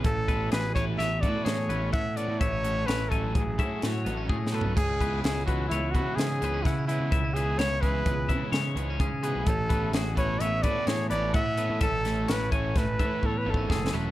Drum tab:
CC |------------------------------|------------------------------|x-----------------------------|------------------------------|
HH |x--x--x--x--x--x--x--x--x--x--|x--x--x--x--x--x--x--x--------|x--x--x--x--x--x--x--x--x--x--|x--x--x--x--x--x--x--x--x--x--|
SD |------o-----o-----o-----------|------o-----------o-------o---|------o-----------o-----o-----|------o-----------o-----------|
FT |------------------------------|----------------------------o-|------------------------------|------------------------------|
BD |o--o-----o-----o--------o-----|o--------o--o--o--------o-----|o--o-----o-----o--------o-----|o--------o--o--o--------o-----|

CC |------------------------------|------------------------------|
HH |x--x--x--x--x--x--x--x--x--x--|x--x--x--x--x--x--------------|
SD |------o-----------o-----------|---o--o-----o-----------o-o---|
FT |------------------------------|------------------------------|
BD |o--o-----o-----o--------o-----|o--------o--o--o--o---o-o-----|